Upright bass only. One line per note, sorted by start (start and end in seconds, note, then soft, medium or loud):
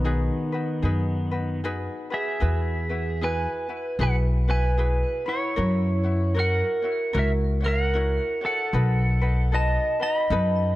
0.00 0.29 B1 medium
0.83 1.86 F#2 medium
2.42 3.45 E2 medium
3.99 5.02 B1 medium
5.58 6.60 F#2 medium
7.15 8.18 C#2 medium
8.73 9.76 B1 loud
10.30 10.76 F#2 loud